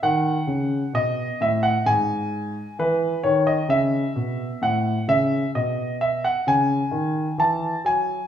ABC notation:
X:1
M:3/4
L:1/16
Q:1/4=65
K:Bmix
V:1 name="Grand piano"
f4 d2 e f g4 | B2 c d e4 f2 e2 | d2 e f g4 a2 g2 |]
V:2 name="Grand piano" clef=bass
D,2 C,2 B,,2 A,,2 G,,4 | E,2 D,2 C,2 B,,2 A,,2 C,2 | B,,4 C,2 D,2 E,2 F,2 |]